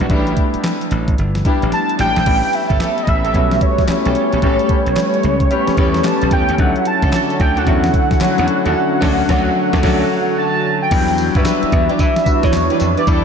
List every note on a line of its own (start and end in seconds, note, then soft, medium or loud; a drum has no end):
0.00 0.08 A#1 medium
0.00 0.10 G3 medium
0.00 0.11 G3 medium
0.00 0.10 B3 medium
0.00 0.10 D4 medium
0.00 0.09 D4 medium
0.00 0.09 E4 medium
0.00 0.12 F#4 medium
0.00 0.11 F#4 medium
0.00 closed hi-hat soft
0.10 0.33 A1 medium
0.10 0.92 G3 medium
0.10 0.35 A3 medium
0.10 0.92 B3 medium
0.10 0.35 D4 medium
0.10 0.93 D4 medium
0.10 0.36 E4 medium
0.10 0.93 E4 medium
0.10 0.36 G4 loud
0.10 kick loud
0.10 closed hi-hat medium
0.27 closed hi-hat soft
0.37 kick medium
0.37 closed hi-hat medium
0.54 muted slap bass stroke soft
0.54 closed hi-hat soft
0.64 snare loud
0.64 clap medium
0.64 closed hi-hat medium
0.81 closed hi-hat medium
0.91 1.14 A1 medium
0.91 closed hi-hat medium
1.08 kick medium
1.08 closed hi-hat soft
1.18 1.41 G1 medium
1.18 closed hi-hat medium
1.35 snare medium
1.35 closed hi-hat medium
1.45 2.09 G3 medium
1.45 1.63 A3 medium
1.45 2.09 B3 medium
1.45 1.63 D4 medium
1.45 2.09 D4 medium
1.45 1.63 E4 medium
1.45 2.09 E4 medium
1.45 1.63 G4 medium
1.45 kick loud
1.45 closed hi-hat medium
1.62 1.71 A1 medium
1.62 closed hi-hat soft
1.72 1.98 A5 loud
1.72 snare medium
1.72 closed hi-hat medium
1.89 closed hi-hat medium
1.99 2.14 A1 medium
1.99 2.17 A3 medium
1.99 2.17 D4 medium
1.99 2.17 E4 medium
1.99 2.17 G4 medium
1.99 2.56 G5 loud
1.99 snare medium
1.99 closed hi-hat medium
2.16 2.25 A#1 medium
2.16 snare medium
2.16 closed hi-hat soft
2.26 2.41 A1 loud
2.26 6.54 G3 medium
2.26 3.09 G3 medium
2.26 6.55 A3 medium
2.26 3.09 B3 medium
2.26 10.87 C#4 medium
2.26 3.09 C#4 medium
2.26 3.09 E4 medium
2.26 kick loud
2.26 closed hi-hat medium
2.26 crash loud
2.43 closed hi-hat soft
2.53 3.02 E5 loud
2.53 closed hi-hat medium
2.70 2.79 G1 medium
2.70 2.79 B3 medium
2.70 2.79 C#4 medium
2.70 2.79 G4 medium
2.70 2.79 A4 medium
2.70 kick loud
2.70 closed hi-hat medium
2.80 2.98 B3 medium
2.80 2.98 C#4 medium
2.80 2.98 G4 medium
2.80 2.98 A4 medium
2.80 snare loud
2.80 clap medium
2.80 closed hi-hat medium
2.98 closed hi-hat medium
3.03 3.10 D#5 medium
3.07 3.30 A1 medium
3.07 3.64 E5 loud
3.07 kick medium
3.07 closed hi-hat medium
3.24 3.35 B3 medium
3.24 3.35 C#4 medium
3.24 3.35 G4 medium
3.24 3.35 A4 medium
3.24 closed hi-hat soft
3.34 3.57 B1 medium
3.34 3.79 G3 medium
3.34 3.79 B3 medium
3.34 3.79 C#4 medium
3.34 3.80 F#4 medium
3.34 kick medium
3.34 closed hi-hat medium
3.51 snare medium
3.51 closed hi-hat medium
3.61 4.16 C#5 loud
3.61 kick loud
3.61 closed hi-hat medium
3.78 kick medium
3.78 snare medium
3.78 closed hi-hat soft
3.88 4.33 G3 medium
3.88 4.33 B3 medium
3.88 4.34 C#4 medium
3.88 4.34 E4 medium
3.88 muted slap bass stroke soft
3.88 snare loud
3.88 clap medium
3.88 closed hi-hat medium
4.05 4.14 B1 medium
4.05 4.16 B3 medium
4.05 4.16 C#4 medium
4.05 4.16 G4 medium
4.05 4.16 A4 medium
4.05 closed hi-hat medium
4.15 6.07 C#5 loud
4.15 closed hi-hat medium
4.32 4.41 A#1 medium
4.32 4.41 B3 medium
4.32 4.41 C#4 medium
4.32 4.41 G4 medium
4.32 4.41 A4 medium
4.32 closed hi-hat soft
4.42 4.57 A1 medium
4.42 5.25 G3 medium
4.42 4.68 B3 medium
4.42 5.25 B3 medium
4.42 4.68 C#4 medium
4.42 5.25 C#4 medium
4.42 4.68 G4 medium
4.42 5.25 G4 medium
4.42 4.68 A4 loud
4.42 kick loud
4.42 closed hi-hat medium
4.59 closed hi-hat soft
4.69 kick loud
4.69 closed hi-hat medium
4.86 4.95 B1 medium
4.86 closed hi-hat soft
4.96 snare loud
4.96 clap medium
4.96 closed hi-hat medium
5.14 closed hi-hat medium
5.23 5.46 C#2 medium
5.23 closed hi-hat medium
5.40 kick medium
5.40 closed hi-hat soft
5.51 5.95 G3 medium
5.51 5.95 B3 medium
5.51 5.95 C#4 medium
5.51 5.96 G4 loud
5.51 closed hi-hat medium
5.67 muted slap bass stroke soft
5.67 snare medium
5.67 closed hi-hat medium
5.77 6.00 E2 medium
5.77 5.95 B3 medium
5.77 5.95 C#4 medium
5.77 5.95 G4 medium
5.77 5.95 A4 medium
5.77 kick loud
5.77 closed hi-hat medium
5.94 snare medium
5.94 closed hi-hat soft
6.04 6.49 G3 medium
6.04 6.49 B3 medium
6.04 6.49 C#4 medium
6.04 6.50 G4 medium
6.04 6.32 A5 loud
6.04 snare loud
6.04 clap medium
6.04 closed hi-hat medium
6.22 6.30 B1 medium
6.22 closed hi-hat medium
6.31 6.46 E2 medium
6.31 6.49 B3 medium
6.31 6.49 C#4 medium
6.31 6.49 G4 medium
6.31 6.49 A4 medium
6.31 6.62 G5 loud
6.31 kick loud
6.31 closed hi-hat medium
6.49 6.57 D#2 medium
6.49 closed hi-hat soft
6.58 6.73 D2 loud
6.58 10.87 D3 medium
6.58 7.41 F#3 medium
6.58 7.41 A3 medium
6.58 7.41 C#4 medium
6.58 6.67 D#4 medium
6.58 10.87 F#4 medium
6.58 6.87 F#5 loud
6.58 kick loud
6.58 closed hi-hat medium
6.66 7.45 E4 medium
6.76 closed hi-hat soft
6.85 7.37 A5 loud
6.85 closed hi-hat medium
7.02 7.11 C#2 medium
7.02 7.11 C#4 medium
7.02 7.11 D4 medium
7.02 7.11 F#4 medium
7.02 7.12 A4 medium
7.02 kick loud
7.02 closed hi-hat medium
7.12 7.30 C#4 medium
7.12 7.30 D4 medium
7.12 7.30 F#4 medium
7.12 7.30 A4 medium
7.12 snare loud
7.12 clap medium
7.12 closed hi-hat medium
7.30 closed hi-hat medium
7.40 7.63 D2 medium
7.40 7.60 G5 loud
7.40 kick loud
7.40 closed hi-hat medium
7.56 7.67 C#4 medium
7.56 7.67 D4 medium
7.56 7.67 F#4 medium
7.56 7.68 A4 medium
7.56 10.38 F#5 loud
7.56 closed hi-hat soft
7.67 7.89 E2 medium
7.67 8.11 F#3 medium
7.67 8.12 A3 medium
7.67 8.12 C#4 medium
7.67 8.12 E4 medium
7.67 kick medium
7.67 closed hi-hat medium
7.84 snare medium
7.84 closed hi-hat medium
7.94 kick loud
7.94 closed hi-hat medium
8.11 kick medium
8.11 snare medium
8.11 closed hi-hat soft
8.21 8.65 F#3 medium
8.21 8.66 A3 medium
8.21 8.66 C#4 medium
8.21 8.66 E4 loud
8.21 muted slap bass stroke soft
8.21 snare loud
8.21 clap medium
8.21 closed hi-hat medium
8.38 8.47 E2 medium
8.38 8.48 C#4 medium
8.38 8.49 D4 medium
8.38 8.49 F#4 medium
8.38 8.49 A4 medium
8.38 closed hi-hat medium
8.48 closed hi-hat medium
8.65 8.74 D#2 medium
8.65 8.75 C#4 medium
8.65 8.75 D4 medium
8.65 8.75 F#4 medium
8.65 8.75 A4 medium
8.65 closed hi-hat soft
9.02 9.22 D2 loud
9.02 9.22 F#3 medium
9.02 9.22 A3 medium
9.02 9.22 C#4 loud
9.02 9.22 C#4 medium
9.02 9.22 D4 loud
9.02 9.22 F#4 loud
9.02 9.22 A4 loud
9.02 kick loud
9.02 snare loud
9.02 crash medium
9.29 9.49 D2 loud
9.29 9.49 F#3 loud
9.29 9.49 A3 loud
9.29 9.49 C#4 loud
9.29 9.49 D4 loud
9.29 9.49 F#4 loud
9.29 9.49 A4 loud
9.29 kick loud
9.29 snare loud
9.73 9.82 D2 loud
9.73 9.82 F#3 loud
9.73 9.82 A3 loud
9.73 9.82 C#4 loud
9.73 9.82 D4 loud
9.73 9.82 F#4 loud
9.73 9.82 A4 medium
9.73 kick loud
9.73 snare loud
9.83 10.03 D2 loud
9.83 10.03 F#3 loud
9.83 10.03 A3 loud
9.83 10.03 C#4 loud
9.83 10.03 D4 loud
9.83 10.03 F#4 loud
9.83 10.03 A4 loud
9.83 kick loud
9.83 snare loud
9.83 crash medium
10.38 10.79 A5 loud
10.82 11.38 G5 loud
10.91 11.28 E2 loud
10.91 13.05 E3 medium
10.91 11.24 F#3 medium
10.91 11.23 G3 medium
10.91 11.23 B3 medium
10.91 13.24 D4 medium
10.91 11.23 D4 medium
10.91 13.24 E4 medium
10.91 kick loud
10.91 closed hi-hat medium
10.91 crash loud
10.91 tambourine medium
11.08 closed hi-hat soft
11.18 closed hi-hat medium
11.18 tambourine medium
11.35 11.44 G2 medium
11.35 12.05 G3 medium
11.35 12.05 B3 medium
11.35 11.44 D4 medium
11.35 12.05 D4 medium
11.35 11.44 E4 medium
11.35 12.05 F#4 medium
11.35 11.44 G4 medium
11.35 11.44 B4 medium
11.35 11.92 E5 loud
11.35 kick loud
11.35 closed hi-hat medium
11.45 11.63 D4 medium
11.45 11.63 E4 medium
11.45 11.63 G4 medium
11.45 11.63 B4 medium
11.45 snare loud
11.45 clap medium
11.45 closed hi-hat medium
11.45 tambourine loud
11.63 muted slap bass stroke soft
11.63 closed hi-hat medium
11.72 11.87 E2 loud
11.72 kick loud
11.72 closed hi-hat medium
11.89 12.00 D4 medium
11.89 12.00 E4 medium
11.89 12.00 G4 medium
11.89 12.00 B4 medium
11.89 12.02 D5 loud
11.89 closed hi-hat soft
11.99 12.14 E3 loud
11.99 12.45 E5 loud
11.99 kick medium
11.99 closed hi-hat medium
11.99 tambourine medium
12.16 snare medium
12.16 closed hi-hat medium
12.26 12.90 G3 medium
12.26 12.90 B3 medium
12.26 12.90 D4 medium
12.26 12.91 F#4 medium
12.26 muted slap bass stroke soft
12.26 kick loud
12.26 closed hi-hat medium
12.26 tambourine medium
12.43 12.52 E3 loud
12.43 12.97 C#5 loud
12.43 kick loud
12.43 snare medium
12.43 closed hi-hat soft
12.53 12.68 E2 medium
12.53 snare loud
12.53 clap medium
12.53 closed hi-hat medium
12.53 tambourine medium
12.70 12.81 D4 medium
12.70 12.81 E4 medium
12.70 12.81 G4 medium
12.70 12.81 B4 medium
12.70 closed hi-hat medium
12.80 12.95 F2 loud
12.80 closed hi-hat medium
12.80 tambourine medium
12.97 13.06 D4 medium
12.97 13.06 E4 medium
12.97 13.07 G4 medium
12.97 13.08 B4 medium
12.97 13.07 D5 medium
12.97 closed hi-hat medium
13.07 13.24 E2 loud
13.07 13.24 G3 medium
13.07 13.24 A3 medium
13.07 13.24 B3 medium
13.07 13.24 D4 loud
13.07 13.24 D4 medium
13.07 13.24 E4 medium
13.07 13.24 G4 medium
13.07 13.24 A4 loud
13.07 13.24 D5 loud
13.07 kick loud
13.07 closed hi-hat medium
13.07 tambourine medium